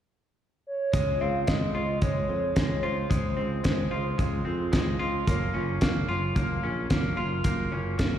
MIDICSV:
0, 0, Header, 1, 5, 480
1, 0, Start_track
1, 0, Key_signature, -5, "major"
1, 0, Tempo, 542495
1, 829, Time_signature, 4, 2, 24, 8
1, 7244, End_track
2, 0, Start_track
2, 0, Title_t, "Soft synth lead"
2, 0, Program_c, 0, 80
2, 590, Note_on_c, 0, 73, 92
2, 1062, Note_on_c, 0, 77, 98
2, 1075, Note_off_c, 0, 73, 0
2, 1299, Note_off_c, 0, 77, 0
2, 1304, Note_on_c, 0, 75, 81
2, 1753, Note_off_c, 0, 75, 0
2, 1786, Note_on_c, 0, 73, 104
2, 2498, Note_on_c, 0, 72, 84
2, 2511, Note_off_c, 0, 73, 0
2, 4425, Note_off_c, 0, 72, 0
2, 7244, End_track
3, 0, Start_track
3, 0, Title_t, "Twelve-string acoustic guitar"
3, 0, Program_c, 1, 25
3, 824, Note_on_c, 1, 49, 68
3, 832, Note_on_c, 1, 53, 74
3, 836, Note_on_c, 1, 56, 72
3, 839, Note_on_c, 1, 60, 71
3, 847, Note_on_c, 1, 65, 70
3, 1050, Note_off_c, 1, 65, 0
3, 1060, Note_on_c, 1, 65, 47
3, 1067, Note_off_c, 1, 49, 0
3, 1067, Note_off_c, 1, 60, 0
3, 1071, Note_off_c, 1, 53, 0
3, 1073, Note_off_c, 1, 56, 0
3, 1078, Note_on_c, 1, 60, 37
3, 1090, Note_on_c, 1, 56, 40
3, 1302, Note_on_c, 1, 49, 60
3, 1303, Note_off_c, 1, 56, 0
3, 1305, Note_off_c, 1, 65, 0
3, 1307, Note_off_c, 1, 60, 0
3, 1310, Note_on_c, 1, 53, 61
3, 1314, Note_on_c, 1, 56, 55
3, 1317, Note_on_c, 1, 60, 67
3, 1324, Note_on_c, 1, 65, 59
3, 1529, Note_off_c, 1, 65, 0
3, 1539, Note_on_c, 1, 65, 41
3, 1546, Note_off_c, 1, 49, 0
3, 1548, Note_off_c, 1, 60, 0
3, 1550, Note_off_c, 1, 53, 0
3, 1552, Note_off_c, 1, 56, 0
3, 1559, Note_on_c, 1, 60, 39
3, 1569, Note_on_c, 1, 56, 34
3, 1776, Note_on_c, 1, 53, 50
3, 1779, Note_off_c, 1, 56, 0
3, 1785, Note_off_c, 1, 65, 0
3, 1789, Note_on_c, 1, 56, 50
3, 1791, Note_off_c, 1, 60, 0
3, 1801, Note_on_c, 1, 60, 53
3, 1808, Note_on_c, 1, 65, 52
3, 2005, Note_off_c, 1, 65, 0
3, 2016, Note_on_c, 1, 65, 51
3, 2019, Note_off_c, 1, 60, 0
3, 2023, Note_off_c, 1, 53, 0
3, 2029, Note_on_c, 1, 60, 42
3, 2030, Note_off_c, 1, 56, 0
3, 2048, Note_on_c, 1, 56, 35
3, 2258, Note_off_c, 1, 56, 0
3, 2260, Note_on_c, 1, 49, 61
3, 2263, Note_off_c, 1, 60, 0
3, 2263, Note_off_c, 1, 65, 0
3, 2267, Note_on_c, 1, 53, 69
3, 2269, Note_on_c, 1, 56, 66
3, 2273, Note_on_c, 1, 60, 75
3, 2279, Note_on_c, 1, 65, 70
3, 2488, Note_off_c, 1, 65, 0
3, 2499, Note_on_c, 1, 65, 45
3, 2504, Note_off_c, 1, 60, 0
3, 2505, Note_off_c, 1, 49, 0
3, 2509, Note_off_c, 1, 53, 0
3, 2510, Note_off_c, 1, 56, 0
3, 2515, Note_on_c, 1, 60, 44
3, 2529, Note_on_c, 1, 56, 36
3, 2736, Note_on_c, 1, 49, 62
3, 2737, Note_off_c, 1, 56, 0
3, 2741, Note_on_c, 1, 53, 64
3, 2742, Note_off_c, 1, 60, 0
3, 2745, Note_off_c, 1, 65, 0
3, 2748, Note_on_c, 1, 56, 65
3, 2753, Note_on_c, 1, 60, 68
3, 2758, Note_on_c, 1, 65, 66
3, 2965, Note_off_c, 1, 65, 0
3, 2976, Note_on_c, 1, 65, 43
3, 2982, Note_off_c, 1, 60, 0
3, 2984, Note_off_c, 1, 49, 0
3, 2986, Note_off_c, 1, 53, 0
3, 2990, Note_off_c, 1, 56, 0
3, 2992, Note_on_c, 1, 60, 39
3, 3006, Note_on_c, 1, 56, 37
3, 3215, Note_on_c, 1, 49, 59
3, 3218, Note_off_c, 1, 56, 0
3, 3222, Note_on_c, 1, 53, 68
3, 3223, Note_off_c, 1, 60, 0
3, 3224, Note_off_c, 1, 65, 0
3, 3228, Note_on_c, 1, 56, 76
3, 3234, Note_on_c, 1, 60, 75
3, 3237, Note_on_c, 1, 65, 70
3, 3449, Note_off_c, 1, 65, 0
3, 3460, Note_on_c, 1, 65, 43
3, 3464, Note_off_c, 1, 49, 0
3, 3465, Note_off_c, 1, 60, 0
3, 3467, Note_off_c, 1, 53, 0
3, 3470, Note_off_c, 1, 56, 0
3, 3476, Note_on_c, 1, 60, 41
3, 3490, Note_on_c, 1, 56, 40
3, 3699, Note_on_c, 1, 53, 55
3, 3701, Note_off_c, 1, 56, 0
3, 3706, Note_off_c, 1, 65, 0
3, 3708, Note_off_c, 1, 60, 0
3, 3712, Note_on_c, 1, 56, 58
3, 3719, Note_on_c, 1, 60, 59
3, 3731, Note_on_c, 1, 65, 63
3, 3928, Note_off_c, 1, 65, 0
3, 3939, Note_on_c, 1, 65, 50
3, 3945, Note_off_c, 1, 53, 0
3, 3947, Note_off_c, 1, 60, 0
3, 3952, Note_off_c, 1, 56, 0
3, 3958, Note_on_c, 1, 60, 45
3, 3973, Note_on_c, 1, 56, 41
3, 4183, Note_on_c, 1, 49, 70
3, 4185, Note_off_c, 1, 65, 0
3, 4187, Note_off_c, 1, 56, 0
3, 4189, Note_on_c, 1, 53, 72
3, 4190, Note_off_c, 1, 60, 0
3, 4197, Note_on_c, 1, 56, 62
3, 4200, Note_on_c, 1, 60, 80
3, 4206, Note_on_c, 1, 65, 86
3, 4414, Note_off_c, 1, 65, 0
3, 4425, Note_on_c, 1, 65, 60
3, 4428, Note_off_c, 1, 49, 0
3, 4430, Note_off_c, 1, 60, 0
3, 4431, Note_off_c, 1, 53, 0
3, 4435, Note_off_c, 1, 56, 0
3, 4440, Note_on_c, 1, 60, 49
3, 4455, Note_on_c, 1, 56, 42
3, 4666, Note_on_c, 1, 54, 67
3, 4668, Note_off_c, 1, 65, 0
3, 4670, Note_off_c, 1, 56, 0
3, 4673, Note_on_c, 1, 58, 74
3, 4676, Note_off_c, 1, 60, 0
3, 4681, Note_on_c, 1, 61, 89
3, 4688, Note_on_c, 1, 65, 86
3, 4893, Note_off_c, 1, 65, 0
3, 4904, Note_on_c, 1, 65, 48
3, 4909, Note_off_c, 1, 54, 0
3, 4910, Note_off_c, 1, 61, 0
3, 4913, Note_off_c, 1, 58, 0
3, 4921, Note_on_c, 1, 61, 46
3, 4936, Note_on_c, 1, 58, 45
3, 5148, Note_off_c, 1, 65, 0
3, 5148, Note_on_c, 1, 54, 62
3, 5149, Note_off_c, 1, 58, 0
3, 5156, Note_off_c, 1, 61, 0
3, 5160, Note_on_c, 1, 58, 76
3, 5166, Note_on_c, 1, 61, 79
3, 5173, Note_on_c, 1, 65, 73
3, 5373, Note_off_c, 1, 65, 0
3, 5383, Note_on_c, 1, 65, 46
3, 5387, Note_off_c, 1, 61, 0
3, 5390, Note_off_c, 1, 54, 0
3, 5396, Note_off_c, 1, 58, 0
3, 5398, Note_on_c, 1, 61, 44
3, 5413, Note_on_c, 1, 58, 42
3, 5623, Note_on_c, 1, 54, 59
3, 5625, Note_off_c, 1, 58, 0
3, 5628, Note_off_c, 1, 65, 0
3, 5635, Note_off_c, 1, 61, 0
3, 5636, Note_on_c, 1, 58, 68
3, 5645, Note_on_c, 1, 61, 73
3, 5657, Note_on_c, 1, 65, 64
3, 5852, Note_off_c, 1, 65, 0
3, 5862, Note_on_c, 1, 65, 46
3, 5867, Note_off_c, 1, 54, 0
3, 5868, Note_off_c, 1, 61, 0
3, 5874, Note_off_c, 1, 58, 0
3, 5878, Note_on_c, 1, 61, 49
3, 5893, Note_on_c, 1, 58, 37
3, 6102, Note_off_c, 1, 58, 0
3, 6106, Note_on_c, 1, 54, 66
3, 6107, Note_off_c, 1, 65, 0
3, 6111, Note_off_c, 1, 61, 0
3, 6113, Note_on_c, 1, 58, 76
3, 6122, Note_on_c, 1, 61, 78
3, 6127, Note_on_c, 1, 65, 73
3, 6333, Note_off_c, 1, 65, 0
3, 6343, Note_on_c, 1, 65, 49
3, 6349, Note_off_c, 1, 54, 0
3, 6349, Note_off_c, 1, 61, 0
3, 6352, Note_off_c, 1, 58, 0
3, 6360, Note_on_c, 1, 61, 47
3, 6377, Note_on_c, 1, 58, 44
3, 6587, Note_off_c, 1, 65, 0
3, 6588, Note_off_c, 1, 58, 0
3, 6591, Note_on_c, 1, 54, 76
3, 6595, Note_off_c, 1, 61, 0
3, 6598, Note_on_c, 1, 58, 83
3, 6604, Note_on_c, 1, 61, 73
3, 6611, Note_on_c, 1, 65, 71
3, 6808, Note_off_c, 1, 65, 0
3, 6818, Note_on_c, 1, 65, 47
3, 6825, Note_off_c, 1, 61, 0
3, 6831, Note_off_c, 1, 54, 0
3, 6835, Note_off_c, 1, 58, 0
3, 6836, Note_on_c, 1, 61, 46
3, 6850, Note_on_c, 1, 58, 42
3, 7061, Note_off_c, 1, 58, 0
3, 7063, Note_on_c, 1, 54, 72
3, 7064, Note_off_c, 1, 65, 0
3, 7066, Note_off_c, 1, 61, 0
3, 7071, Note_on_c, 1, 58, 77
3, 7077, Note_on_c, 1, 61, 82
3, 7083, Note_on_c, 1, 65, 85
3, 7244, Note_off_c, 1, 54, 0
3, 7244, Note_off_c, 1, 58, 0
3, 7244, Note_off_c, 1, 61, 0
3, 7244, Note_off_c, 1, 65, 0
3, 7244, End_track
4, 0, Start_track
4, 0, Title_t, "Picked electric bass"
4, 0, Program_c, 2, 34
4, 827, Note_on_c, 2, 37, 88
4, 1025, Note_off_c, 2, 37, 0
4, 1074, Note_on_c, 2, 37, 78
4, 1269, Note_off_c, 2, 37, 0
4, 1313, Note_on_c, 2, 37, 82
4, 1509, Note_off_c, 2, 37, 0
4, 1548, Note_on_c, 2, 37, 81
4, 1746, Note_off_c, 2, 37, 0
4, 1789, Note_on_c, 2, 37, 83
4, 1987, Note_off_c, 2, 37, 0
4, 2029, Note_on_c, 2, 41, 85
4, 2227, Note_off_c, 2, 41, 0
4, 2272, Note_on_c, 2, 37, 75
4, 2468, Note_off_c, 2, 37, 0
4, 2512, Note_on_c, 2, 37, 66
4, 2709, Note_off_c, 2, 37, 0
4, 2747, Note_on_c, 2, 37, 87
4, 2946, Note_off_c, 2, 37, 0
4, 2986, Note_on_c, 2, 37, 73
4, 3185, Note_off_c, 2, 37, 0
4, 3230, Note_on_c, 2, 37, 74
4, 3427, Note_off_c, 2, 37, 0
4, 3470, Note_on_c, 2, 37, 76
4, 3667, Note_off_c, 2, 37, 0
4, 3707, Note_on_c, 2, 37, 95
4, 3906, Note_off_c, 2, 37, 0
4, 3950, Note_on_c, 2, 41, 82
4, 4148, Note_off_c, 2, 41, 0
4, 4188, Note_on_c, 2, 37, 84
4, 4386, Note_off_c, 2, 37, 0
4, 4434, Note_on_c, 2, 37, 75
4, 4630, Note_off_c, 2, 37, 0
4, 4670, Note_on_c, 2, 30, 95
4, 4868, Note_off_c, 2, 30, 0
4, 4912, Note_on_c, 2, 30, 81
4, 5109, Note_off_c, 2, 30, 0
4, 5150, Note_on_c, 2, 30, 84
4, 5348, Note_off_c, 2, 30, 0
4, 5389, Note_on_c, 2, 30, 72
4, 5587, Note_off_c, 2, 30, 0
4, 5628, Note_on_c, 2, 30, 104
4, 5826, Note_off_c, 2, 30, 0
4, 5874, Note_on_c, 2, 34, 79
4, 6070, Note_off_c, 2, 34, 0
4, 6113, Note_on_c, 2, 30, 78
4, 6309, Note_off_c, 2, 30, 0
4, 6355, Note_on_c, 2, 30, 80
4, 6550, Note_off_c, 2, 30, 0
4, 6589, Note_on_c, 2, 30, 93
4, 6786, Note_off_c, 2, 30, 0
4, 6830, Note_on_c, 2, 30, 80
4, 7027, Note_off_c, 2, 30, 0
4, 7075, Note_on_c, 2, 30, 79
4, 7244, Note_off_c, 2, 30, 0
4, 7244, End_track
5, 0, Start_track
5, 0, Title_t, "Drums"
5, 827, Note_on_c, 9, 42, 64
5, 829, Note_on_c, 9, 36, 96
5, 915, Note_off_c, 9, 42, 0
5, 917, Note_off_c, 9, 36, 0
5, 1304, Note_on_c, 9, 42, 59
5, 1311, Note_on_c, 9, 36, 82
5, 1311, Note_on_c, 9, 38, 86
5, 1392, Note_off_c, 9, 42, 0
5, 1399, Note_off_c, 9, 36, 0
5, 1400, Note_off_c, 9, 38, 0
5, 1784, Note_on_c, 9, 42, 50
5, 1787, Note_on_c, 9, 36, 96
5, 1872, Note_off_c, 9, 42, 0
5, 1876, Note_off_c, 9, 36, 0
5, 2265, Note_on_c, 9, 42, 60
5, 2270, Note_on_c, 9, 36, 100
5, 2270, Note_on_c, 9, 38, 104
5, 2354, Note_off_c, 9, 42, 0
5, 2358, Note_off_c, 9, 38, 0
5, 2359, Note_off_c, 9, 36, 0
5, 2749, Note_on_c, 9, 36, 98
5, 2750, Note_on_c, 9, 42, 60
5, 2837, Note_off_c, 9, 36, 0
5, 2839, Note_off_c, 9, 42, 0
5, 3224, Note_on_c, 9, 42, 59
5, 3230, Note_on_c, 9, 36, 88
5, 3231, Note_on_c, 9, 38, 97
5, 3312, Note_off_c, 9, 42, 0
5, 3319, Note_off_c, 9, 36, 0
5, 3319, Note_off_c, 9, 38, 0
5, 3705, Note_on_c, 9, 42, 48
5, 3707, Note_on_c, 9, 36, 92
5, 3794, Note_off_c, 9, 42, 0
5, 3795, Note_off_c, 9, 36, 0
5, 4182, Note_on_c, 9, 42, 63
5, 4187, Note_on_c, 9, 38, 91
5, 4188, Note_on_c, 9, 36, 101
5, 4271, Note_off_c, 9, 42, 0
5, 4275, Note_off_c, 9, 38, 0
5, 4277, Note_off_c, 9, 36, 0
5, 4667, Note_on_c, 9, 42, 61
5, 4668, Note_on_c, 9, 36, 97
5, 4755, Note_off_c, 9, 42, 0
5, 4756, Note_off_c, 9, 36, 0
5, 5142, Note_on_c, 9, 42, 57
5, 5149, Note_on_c, 9, 38, 98
5, 5150, Note_on_c, 9, 36, 86
5, 5230, Note_off_c, 9, 42, 0
5, 5237, Note_off_c, 9, 38, 0
5, 5239, Note_off_c, 9, 36, 0
5, 5627, Note_on_c, 9, 42, 45
5, 5628, Note_on_c, 9, 36, 106
5, 5716, Note_off_c, 9, 42, 0
5, 5717, Note_off_c, 9, 36, 0
5, 6107, Note_on_c, 9, 42, 65
5, 6111, Note_on_c, 9, 36, 106
5, 6111, Note_on_c, 9, 38, 95
5, 6195, Note_off_c, 9, 42, 0
5, 6199, Note_off_c, 9, 36, 0
5, 6200, Note_off_c, 9, 38, 0
5, 6585, Note_on_c, 9, 42, 67
5, 6589, Note_on_c, 9, 36, 100
5, 6673, Note_off_c, 9, 42, 0
5, 6678, Note_off_c, 9, 36, 0
5, 7069, Note_on_c, 9, 42, 61
5, 7073, Note_on_c, 9, 36, 94
5, 7076, Note_on_c, 9, 38, 95
5, 7157, Note_off_c, 9, 42, 0
5, 7162, Note_off_c, 9, 36, 0
5, 7164, Note_off_c, 9, 38, 0
5, 7244, End_track
0, 0, End_of_file